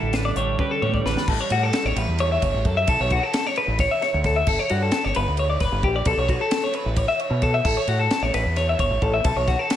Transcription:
0.00 0.31 A1 medium
0.00 0.36 A2 medium
0.00 0.37 D3 medium
0.00 0.37 G3 medium
0.00 0.14 D4 medium
0.00 0.60 E4 medium
0.00 0.14 A4 medium
0.13 1.05 D4 medium
0.13 0.25 B4 medium
0.13 snare loud
0.13 closed hi-hat medium
0.25 0.36 D5 medium
0.36 0.55 A1 medium
0.36 1.29 D3 medium
0.36 0.83 G3 medium
0.36 0.59 C#5 medium
0.36 closed hi-hat medium
0.59 1.26 G4 medium
0.59 0.71 B4 medium
0.59 kick loud
0.59 high tom medium
0.71 0.82 A4 medium
0.82 1.26 E2 medium
0.82 1.01 A2 medium
0.82 2.88 G3 medium
0.82 0.94 C#5 medium
0.82 mid tom medium
0.94 1.05 D5 medium
0.94 kick medium
1.05 1.14 A1 medium
1.05 1.26 D4 medium
1.05 1.29 B4 medium
1.05 snare medium
1.17 snare medium
1.28 1.37 A1 loud
1.28 1.41 A4 medium
1.28 kick loud
1.28 crash loud
1.41 1.51 C#5 medium
1.50 1.69 A2 medium
1.50 1.63 F#4 medium
1.50 ride medium
1.63 1.86 A4 medium
1.73 snare loud
1.73 ride loud
1.85 1.94 A1 medium
1.85 1.98 C#5 medium
1.96 2.06 A1 loud
1.96 2.20 B4 medium
1.96 ride medium
2.08 2.36 E2 medium
2.18 2.31 C#5 medium
2.18 ride loud
2.32 2.43 E5 medium
2.42 2.52 G1 medium
2.42 2.66 C#5 medium
2.42 kick medium
2.42 ride loud
2.54 2.63 A1 loud
2.65 2.84 F#2 loud
2.65 2.77 A4 medium
2.65 kick medium
2.65 ride medium
2.77 2.88 E5 medium
2.87 2.97 B1 loud
2.87 3.00 A4 medium
2.87 kick loud
2.87 ride loud
3.00 3.18 B1 loud
3.00 3.11 C#5 medium
3.10 3.23 F#4 medium
3.10 kick medium
3.10 ride medium
3.23 3.47 A4 medium
3.33 snare loud
3.33 ride loud
3.47 3.57 C#5 medium
3.56 3.79 B4 medium
3.56 ride medium
3.68 3.86 A1 loud
3.79 3.91 C#5 medium
3.79 kick loud
3.79 snare soft
3.79 ride medium
3.91 4.02 E5 medium
4.02 4.25 C#5 medium
4.02 snare soft
4.02 ride medium
4.14 4.42 D2 loud
4.24 4.36 A4 medium
4.24 kick medium
4.24 snare soft
4.24 ride medium
4.36 4.47 E5 medium
4.47 4.56 G1 loud
4.47 4.59 A4 medium
4.47 kick loud
4.47 crash loud
4.59 4.70 C#5 medium
4.69 4.89 G2 loud
4.69 4.81 F#4 medium
4.69 ride medium
4.82 5.04 A4 medium
4.91 snare loud
4.91 ride loud
5.04 5.14 G1 medium
5.04 5.16 C#5 medium
5.15 5.25 G1 loud
5.15 5.39 B4 medium
5.15 ride medium
5.28 5.56 D2 medium
5.37 5.49 C#5 medium
5.37 ride loud
5.50 5.60 D5 medium
5.60 5.70 F#1 medium
5.60 5.84 B4 medium
5.60 kick medium
5.60 snare soft
5.60 ride medium
5.72 5.82 G1 loud
5.83 6.02 A#1 loud
5.83 5.95 G4 medium
5.83 kick medium
5.83 ride medium
5.96 6.07 D5 medium
6.05 6.15 B1 loud
6.05 6.18 A4 loud
6.05 kick loud
6.05 ride loud
6.17 6.36 B1 medium
6.17 6.30 C#5 medium
6.29 6.41 F#4 medium
6.29 kick medium
6.29 ride medium
6.41 6.64 A4 medium
6.51 snare loud
6.51 ride loud
6.64 6.75 C#5 medium
6.73 6.97 B4 medium
6.73 ride medium
6.86 7.05 A1 medium
6.96 7.08 C#5 medium
6.96 kick medium
6.96 ride loud
7.08 7.21 E5 medium
7.20 7.43 C#5 medium
7.20 ride medium
7.30 7.59 B2 loud
7.42 7.54 A4 medium
7.42 kick medium
7.42 ride medium
7.54 7.66 E5 medium
7.65 7.75 A1 loud
7.65 7.77 A4 medium
7.65 kick loud
7.65 crash loud
7.77 7.89 C#5 medium
7.87 8.07 A2 medium
7.87 8.00 F#4 medium
7.87 ride medium
8.00 8.23 A4 medium
8.10 snare loud
8.10 ride loud
8.22 8.32 A1 loud
8.22 8.34 C#5 medium
8.34 8.44 A1 loud
8.34 8.57 B4 medium
8.34 snare soft
8.34 ride medium
8.45 8.74 E2 medium
8.56 8.68 C#5 loud
8.56 snare soft
8.56 ride loud
8.69 8.80 E5 medium
8.79 8.89 G1 medium
8.79 9.03 C#5 medium
8.79 kick medium
8.79 ride medium
8.90 9.00 A1 loud
9.02 9.21 A1 loud
9.02 9.14 A4 medium
9.02 kick medium
9.02 ride medium
9.14 9.25 E5 medium
9.24 9.34 B1 loud
9.24 9.37 A4 loud
9.24 kick loud
9.24 ride loud
9.35 9.55 B1 loud
9.35 9.48 C#5 medium
9.48 9.59 F#4 medium
9.48 kick medium
9.48 snare soft
9.48 ride medium
9.59 9.76 A4 medium
9.70 snare loud
9.70 ride loud

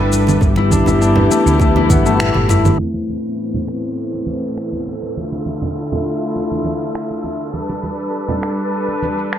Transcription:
0.00 0.37 G1 medium
0.00 0.39 G3 medium
0.00 0.47 G3 medium
0.00 1.31 A3 medium
0.00 1.90 B3 loud
0.00 0.39 D4 medium
0.00 0.71 D4 medium
0.00 0.57 E4 loud
0.00 0.39 A4 medium
0.00 1.13 A4 loud
0.00 0.39 B4 medium
0.12 high conga soft
0.12 shaker medium
0.27 muted conga soft
0.27 low conga medium
0.27 shaker soft
0.41 0.82 G1 loud
0.41 2.77 E3 medium
0.41 2.77 B3 medium
0.41 2.77 E4 medium
0.41 2.77 G4 medium
0.41 kick loud
0.41 high conga medium
0.41 shaker soft
0.56 0.87 E4 loud
0.56 muted conga medium
0.71 1.01 D4 medium
0.71 kick medium
0.71 high conga medium
0.71 low conga medium
0.71 shaker medium
0.86 1.26 G1 loud
0.86 1.76 E4 medium
0.86 low conga medium
0.86 shaker soft
1.01 3.81 D4 medium
1.01 shaker soft
1.16 low conga medium
1.31 1.61 A3 loud
1.31 shaker medium
1.46 1.86 D2 medium
1.46 shaker soft
1.60 2.05 A3 loud
1.60 kick loud
1.60 muted conga medium
1.60 shaker soft
1.76 2.19 E4 loud
1.76 high conga medium
1.76 low conga medium
1.90 2.31 G1 medium
1.90 5.01 B3 medium
1.90 kick loud
1.90 high tom medium
1.90 muted conga medium
1.90 high conga medium
1.90 low conga medium
1.90 shaker medium
2.06 5.39 A3 loud
2.06 shaker soft
2.20 2.49 E4 medium
2.20 finger snap medium
2.20 mid tom medium
2.20 shaker soft
2.34 2.75 G1 medium
2.34 mid tom medium
2.34 muted conga soft
2.49 5.11 E4 loud
2.49 mid tom medium
2.49 muted conga medium
2.49 high conga soft
2.49 shaker medium
2.65 mid tom medium
2.65 low conga medium
2.65 shaker soft
2.79 5.15 A2 medium
2.79 5.15 E3 medium
2.79 5.15 B3 medium
2.79 5.15 C4 medium
2.79 9.38 A4 medium
2.79 downlifter medium
2.79 high conga medium
2.94 muted conga medium
3.09 high conga medium
3.25 shaker soft
3.54 low conga medium
3.68 finger snap medium
4.14 muted conga soft
4.27 high conga medium
4.27 shaker medium
4.58 finger snap medium
4.73 muted conga soft
4.73 high conga soft
4.87 high conga soft
4.87 shaker medium
5.03 muted conga soft
5.03 shaker soft
5.16 7.52 D3 medium
5.16 7.52 A3 medium
5.16 7.52 E4 medium
5.16 7.52 F4 medium
5.16 high conga medium
5.16 shaker soft
5.32 muted conga medium
5.46 high conga medium
5.46 shaker medium
5.62 low conga medium
5.62 shaker soft
5.77 shaker soft
5.92 low conga medium
6.06 shaker medium
6.22 shaker soft
6.36 muted conga soft
6.36 shaker soft
6.52 high conga medium
6.65 muted conga medium
6.65 high conga medium
6.65 shaker medium
6.81 shaker soft
6.95 finger snap medium
6.95 shaker soft
7.11 muted conga soft
7.24 muted conga soft
7.24 high conga soft
7.24 shaker medium
7.41 shaker soft
7.54 9.38 G3 medium
7.54 9.38 D4 medium
7.54 9.38 A4 medium
7.54 9.38 B4 medium
7.54 high conga medium
7.54 shaker soft
7.70 muted conga medium
7.83 high conga medium
7.83 shaker medium
8.00 shaker soft
8.14 shaker soft
8.29 low conga medium
8.43 finger snap medium
8.43 shaker medium
8.59 shaker soft
8.73 shaker soft
8.89 muted conga soft
9.03 high conga medium
9.03 shaker medium
9.18 shaker soft
9.33 finger snap medium
9.33 shaker soft

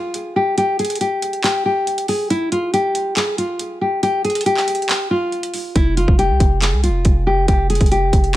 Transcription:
0.00 0.33 F4 medium
0.14 closed hi-hat medium
0.36 0.56 G4 medium
0.58 0.77 G4 loud
0.58 closed hi-hat medium
0.79 0.99 G#4 medium
0.79 closed hi-hat medium
0.85 closed hi-hat medium
0.90 closed hi-hat medium
0.95 closed hi-hat medium
1.01 1.41 G4 medium
1.01 closed hi-hat medium
1.22 closed hi-hat medium
1.33 closed hi-hat medium
1.44 1.64 G4 medium
1.44 clap loud
1.44 closed hi-hat medium
1.66 2.06 G4 medium
1.87 closed hi-hat medium
1.98 closed hi-hat medium
2.08 2.28 G#4 medium
2.08 open hi-hat medium
2.30 2.50 E4 medium
2.30 closed hi-hat medium
2.52 2.72 F4 medium
2.52 closed hi-hat medium
2.73 3.14 G4 medium
2.73 closed hi-hat medium
2.95 closed hi-hat medium
3.17 3.36 G#4 medium
3.17 clap loud
3.17 closed hi-hat medium
3.38 3.79 F4 medium
3.38 closed hi-hat medium
3.59 closed hi-hat medium
3.81 4.01 G4 medium
4.03 4.23 G4 loud
4.03 closed hi-hat medium
4.24 4.44 G#4 medium
4.24 closed hi-hat soft
4.30 closed hi-hat medium
4.35 closed hi-hat medium
4.41 closed hi-hat medium
4.46 5.07 G4 medium
4.46 closed hi-hat medium
4.57 clap medium
4.68 closed hi-hat medium
4.75 closed hi-hat medium
4.82 closed hi-hat soft
4.89 clap loud
4.89 closed hi-hat medium
5.11 5.72 F4 medium
5.32 closed hi-hat soft
5.43 closed hi-hat medium
5.54 open hi-hat medium
5.76 6.07 F1 loud
5.76 5.95 E4 loud
5.76 kick loud
5.76 closed hi-hat medium
5.97 6.17 F4 medium
5.97 closed hi-hat medium
6.08 6.31 F1 loud
6.08 kick loud
6.19 6.59 G4 medium
6.19 closed hi-hat medium
6.30 6.40 C2 loud
6.40 6.74 F1 loud
6.40 kick loud
6.40 closed hi-hat medium
6.62 6.82 G#4 medium
6.62 clap loud
6.62 closed hi-hat medium
6.73 6.90 C2 loud
6.83 7.24 F4 medium
6.83 closed hi-hat medium
6.89 7.04 F1 loud
7.05 7.47 F1 loud
7.05 kick medium
7.05 closed hi-hat medium
7.27 7.46 G4 medium
7.48 7.79 F1 loud
7.48 7.68 G4 loud
7.48 kick loud
7.48 closed hi-hat medium
7.70 7.89 G#4 medium
7.70 closed hi-hat medium
7.75 closed hi-hat medium
7.81 8.12 F1 loud
7.81 kick loud
7.81 closed hi-hat medium
7.86 closed hi-hat medium
7.91 8.32 G4 medium
7.91 closed hi-hat medium
8.13 8.37 F1 loud
8.13 kick medium
8.13 closed hi-hat medium
8.24 closed hi-hat soft

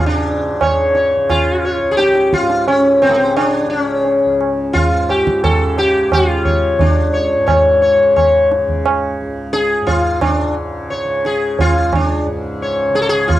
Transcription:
0.00 1.77 C#2 medium
0.00 2.41 G#2 medium
0.00 0.54 C#3 medium
0.06 0.91 D4 medium
0.54 1.16 C#3 medium
0.61 0.93 C#5 soft
0.61 tabla na medium
0.61 tabla ge medium
0.95 1.27 C#5 soft
0.95 tabla te medium
1.16 3.03 C#3 soft
1.29 1.91 F4 medium
1.29 tabla na medium
1.29 tabla ge medium
1.65 1.96 C#5 soft
1.78 4.25 C#2 soft
1.91 1.96 G#4 medium
1.97 2.33 G4 medium
1.97 tabla te medium
2.15 tabla te medium
2.33 2.68 F4 medium
2.33 tabla ke medium
2.41 4.88 G#2 medium
2.50 tabla te medium
2.68 3.01 C#4 medium
2.68 tabla na medium
3.02 3.64 C#3 medium
3.02 3.09 C4 medium
3.02 tabla na medium
3.09 3.16 A3 medium
3.15 3.36 C4 medium
3.36 3.69 D4 medium
3.36 tabla na medium
3.64 5.51 C#3 soft
3.70 3.81 D4 medium
3.81 4.35 C#4 medium
4.05 tabla tin medium
4.25 6.74 C#2 medium
4.41 tabla na medium
4.73 5.09 F4 medium
4.73 tabla tin medium
4.73 tabla ge medium
4.89 7.35 G#2 medium
5.09 5.43 G4 medium
5.09 tabla na medium
5.27 tabla ke medium
5.44 5.78 A4 medium
5.44 tabla na medium
5.44 tabla ge medium
5.51 6.15 C#3 medium
5.78 6.13 G4 medium
5.78 tabla te medium
6.12 7.97 C#3 medium
6.12 6.83 F4 loud
6.12 tabla na medium
6.12 tabla ge medium
6.45 6.77 C#5 soft
6.45 tabla ge soft
6.74 9.20 C#2 medium
6.79 7.79 D4 medium
6.79 tabla tin medium
6.79 tabla ge medium
7.13 7.45 C#5 soft
7.36 9.80 G#2 medium
7.46 7.79 C#5 soft
7.46 tabla na medium
7.46 tabla ge medium
7.82 8.14 C#5 soft
7.82 tabla te medium
7.97 8.59 C#3 medium
8.16 8.49 C#5 soft
8.16 tabla na medium
8.16 tabla ge medium
8.52 tabla te medium
8.59 10.42 C#3 medium
8.68 tabla ge soft
8.86 tabla na medium
9.21 11.65 C#2 medium
9.53 9.89 G#4 loud
9.53 tabla te medium
9.81 12.26 G#2 medium
9.87 10.21 F4 medium
9.87 tabla tin medium
9.87 tabla ge medium
10.21 10.54 D4 medium
10.21 tabla na medium
10.21 tabla ge medium
10.42 11.04 C#3 medium
10.90 11.22 C#5 soft
11.04 12.89 C#3 medium
11.25 11.61 G#4 medium
11.25 tabla te medium
11.59 11.95 F4 medium
11.59 tabla tin medium
11.59 tabla ge medium
11.65 13.39 C#2 medium
11.93 12.26 D4 medium
11.93 tabla na medium
11.93 tabla ge medium
12.26 13.39 G#2 medium
12.62 12.94 C#5 soft
12.89 13.39 C#3 medium
12.95 13.01 G#4 loud
12.95 tabla te medium
13.02 13.09 A4 medium
13.09 13.30 G#4 loud
13.28 13.39 F4 medium
13.28 tabla tin medium
13.28 tabla ge medium

